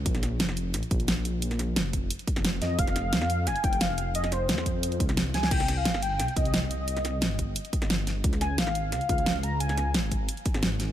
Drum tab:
CC |----------------|----------------|----------------|----------------|
HH |xxx-x-x-xxxxx-x-|xxx-x-x-xxxxx-x-|xxx-x-x-xxxxx-x-|xxx-x-x-xxxxx-x-|
SD |-oo-oo--o---o---|-oo-o------oo-o-|-oo-oo--o---o---|-oo-oo-----oo-oo|
BD |o---------o-----|------o---o-----|o---------o-----|------o---o-----|

CC |x---------------|----------------|----------------|----------------|
HH |xxx-x-x-xxxxx-x-|xxx-x-x-xxxxx-x-|xxx-x-x-xxxxx-x-|xxx-x-x-xxxxx-x-|
SD |-oo-oo--o---o---|-oo-o------oo-o-|-oo-oo--o---o---|-oo-o------oo-o-|
BD |o---------o-----|------o---o-----|o---------o-----|------o---o-----|